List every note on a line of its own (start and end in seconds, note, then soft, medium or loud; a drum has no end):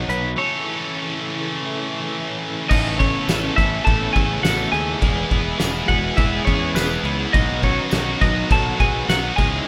0.00 0.36 D#3 medium
0.00 0.36 F#3 medium
0.00 0.33 B3 medium
0.00 0.37 B3 medium
0.00 0.38 D#4 medium
0.00 0.33 F#4 medium
0.00 0.39 F#4 medium
0.00 0.10 D#5 medium
0.08 0.34 B1 medium
0.08 0.39 B4 medium
0.08 closed hi-hat medium
0.37 2.68 C#3 medium
0.37 2.68 E3 medium
0.37 2.69 A3 medium
0.37 2.68 A3 medium
0.37 2.69 C#4 medium
0.37 2.67 E4 medium
0.37 2.70 A4 medium
0.37 2.37 C#5 medium
2.69 3.13 A1 loud
2.69 5.00 C#3 medium
2.69 2.99 E3 medium
2.69 4.99 A3 medium
2.69 2.98 A3 loud
2.69 4.99 B3 medium
2.69 2.99 C#4 medium
2.69 2.97 D#4 medium
2.69 4.99 E4 medium
2.69 2.99 A4 loud
2.69 2.99 D#5 medium
2.69 kick loud
2.69 crash loud
2.69 crash medium
2.98 3.28 E3 medium
2.98 3.28 A3 medium
2.98 3.52 C#4 medium
2.98 3.28 C#4 loud
2.98 3.28 A4 loud
2.98 3.56 C#5 medium
2.98 kick medium
2.98 crash medium
3.28 3.49 A1 medium
3.28 3.57 E3 medium
3.28 3.57 A3 loud
3.28 3.58 C#4 loud
3.28 3.58 A4 loud
3.28 snare loud
3.28 tambourine medium
3.28 crash medium
3.55 3.79 A1 loud
3.55 3.84 E3 medium
3.55 3.84 A3 medium
3.55 3.85 C#4 medium
3.55 3.83 E4 medium
3.55 3.84 E5 medium
3.55 kick medium
3.55 snare soft
3.55 crash medium
3.59 3.85 A4 loud
3.85 4.08 A1 medium
3.85 4.13 E3 medium
3.85 4.13 A3 medium
3.85 4.14 C#4 medium
3.85 4.13 A4 medium
3.85 4.14 A4 medium
3.85 4.12 A5 loud
3.85 kick loud
3.85 crash medium
4.13 4.37 A1 medium
4.13 4.43 E3 medium
4.13 4.43 A3 medium
4.13 4.44 C#4 loud
4.13 4.43 G#4 medium
4.13 4.44 A4 loud
4.13 4.43 G#5 medium
4.13 kick medium
4.13 crash medium
4.43 4.65 A1 medium
4.43 4.72 E3 medium
4.43 4.72 A3 medium
4.43 4.73 C#4 medium
4.43 4.71 F#4 medium
4.43 4.73 A4 medium
4.43 4.71 F#5 medium
4.43 snare loud
4.43 tambourine medium
4.43 crash medium
4.72 4.94 D#2 medium
4.72 4.99 E3 medium
4.72 5.00 A3 medium
4.72 5.01 C#4 loud
4.72 5.86 G#4 medium
4.72 5.01 A4 medium
4.72 5.88 G#5 medium
4.72 crash medium
5.01 5.23 E1 medium
5.01 5.30 E3 medium
5.01 7.33 E3 medium
5.01 7.33 G#3 medium
5.01 5.31 B3 medium
5.01 7.33 B3 medium
5.01 5.31 E4 loud
5.01 5.31 G#4 loud
5.01 7.33 G#4 medium
5.01 kick loud
5.01 crash medium
5.31 5.52 E1 medium
5.31 5.57 E3 medium
5.31 5.59 B3 medium
5.31 5.58 E4 medium
5.31 5.59 G#4 medium
5.31 kick medium
5.31 crash medium
5.58 5.81 E1 medium
5.58 5.88 E3 loud
5.58 5.89 B3 loud
5.58 5.89 E4 loud
5.58 5.90 G#4 loud
5.58 snare loud
5.58 tambourine loud
5.58 crash medium
5.88 6.10 E1 medium
5.88 6.16 E3 medium
5.88 6.16 B3 medium
5.88 6.17 E4 loud
5.88 6.15 F#4 medium
5.88 6.17 G#4 medium
5.88 6.19 F#5 medium
5.88 kick medium
5.88 crash medium
6.16 6.39 E1 loud
6.16 6.45 E3 medium
6.16 6.45 B3 medium
6.16 6.44 E4 medium
6.16 6.46 E4 medium
6.16 6.46 G#4 medium
6.16 6.44 E5 medium
6.16 kick loud
6.16 crash medium
6.45 6.69 E2 medium
6.45 6.75 E3 medium
6.45 6.75 B3 loud
6.45 6.74 C#4 medium
6.45 6.76 E4 loud
6.45 6.76 G#4 loud
6.45 6.76 C#5 medium
6.45 kick medium
6.45 crash medium
6.74 6.96 E1 medium
6.74 7.03 E3 medium
6.74 7.17 B3 medium
6.74 7.03 B3 medium
6.74 7.04 E4 medium
6.74 7.05 G#4 medium
6.74 7.16 B4 medium
6.74 snare loud
6.74 tambourine loud
6.74 crash medium
7.03 7.25 C#2 medium
7.03 7.32 E3 medium
7.03 7.32 B3 loud
7.03 7.33 E4 medium
7.03 7.33 G#4 medium
7.03 crash medium
7.33 7.77 B1 loud
7.33 9.37 D#3 medium
7.33 7.60 F#3 medium
7.33 9.37 F#3 medium
7.33 7.62 B3 medium
7.33 9.37 B3 medium
7.33 7.62 D#4 loud
7.33 7.62 D#4 medium
7.33 7.63 F#4 loud
7.33 9.37 F#4 medium
7.33 7.63 D#5 medium
7.33 kick loud
7.33 crash medium
7.62 7.90 F#3 medium
7.62 7.90 B3 medium
7.62 8.18 C#4 medium
7.62 7.91 D#4 medium
7.62 7.92 F#4 medium
7.62 8.18 C#5 loud
7.62 kick medium
7.62 crash medium
7.91 8.14 B1 medium
7.91 8.19 F#3 loud
7.91 8.20 B3 loud
7.91 8.22 D#4 loud
7.91 8.21 F#4 loud
7.91 snare loud
7.91 tambourine loud
7.91 crash medium
8.20 8.43 B1 medium
8.20 8.48 F#3 medium
8.20 8.49 B3 medium
8.20 8.50 D#4 loud
8.20 8.50 D#4 medium
8.20 8.50 F#4 medium
8.20 8.49 D#5 loud
8.20 kick medium
8.20 snare soft
8.20 crash medium
8.50 8.72 B1 loud
8.50 8.76 F#3 medium
8.50 8.77 B3 medium
8.50 8.78 D#4 medium
8.50 8.78 F#4 medium
8.50 8.79 A4 medium
8.50 8.79 A5 loud
8.50 kick loud
8.50 crash medium
8.78 9.01 B1 medium
8.78 9.07 F#3 medium
8.78 9.07 B3 loud
8.78 9.08 D#4 loud
8.78 9.08 F#4 loud
8.78 9.07 G#4 medium
8.78 9.09 G#5 loud
8.78 kick medium
8.78 crash medium
9.08 9.30 B1 medium
9.08 9.36 F#3 medium
9.08 9.36 B3 medium
9.08 9.36 D#4 loud
9.08 9.37 F#4 medium
9.08 9.36 F#5 medium
9.08 snare loud
9.08 tambourine medium
9.08 crash medium
9.36 9.59 C#2 medium
9.36 9.68 C#3 medium
9.36 9.65 E3 medium
9.36 9.65 G#3 loud
9.36 9.68 G#3 medium
9.36 9.67 C#4 loud
9.36 9.68 D#4 medium
9.36 9.68 E4 medium
9.36 9.68 G#4 medium
9.36 9.66 G#4 loud
9.36 9.68 G#5 loud
9.36 kick loud
9.36 crash medium